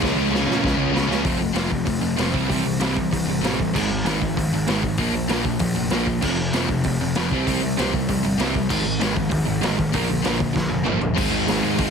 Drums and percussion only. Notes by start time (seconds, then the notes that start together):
0.02 kick, snare
0.34 snare
0.51 snare
0.64 kick, snare
0.96 snare
1.11 snare
1.25 kick, open hi-hat
1.55 snare, open hi-hat
1.71 kick
1.86 kick, open hi-hat
2.18 snare, open hi-hat
2.34 kick
2.50 kick, open hi-hat
2.80 snare, open hi-hat
2.97 kick
3.13 kick, open hi-hat
3.44 snare, open hi-hat
3.60 kick
3.75 kick, crash
4.06 snare, open hi-hat
4.22 kick
4.37 kick, open hi-hat
4.67 snare, open hi-hat
4.83 kick
4.97 kick, open hi-hat
5.29 snare, open hi-hat
5.45 kick
5.59 kick, open hi-hat
5.90 snare, open hi-hat
6.07 kick
6.22 kick, crash
6.53 snare, open hi-hat
6.69 kick
6.84 kick, open hi-hat
7.15 snare, open hi-hat
7.31 kick
7.47 kick, open hi-hat
7.79 snare, open hi-hat
7.94 kick
8.09 kick, open hi-hat
8.39 snare, open hi-hat
8.55 kick
8.70 kick, crash
9.01 snare, open hi-hat
9.17 kick
9.31 kick, open hi-hat
9.63 snare, open hi-hat
9.79 kick
9.93 kick, open hi-hat
10.24 snare, open hi-hat
10.40 kick
10.56 kick, snare
10.86 mid tom
11.01 floor tom
11.18 kick, crash
11.48 snare, open hi-hat
11.78 kick, open hi-hat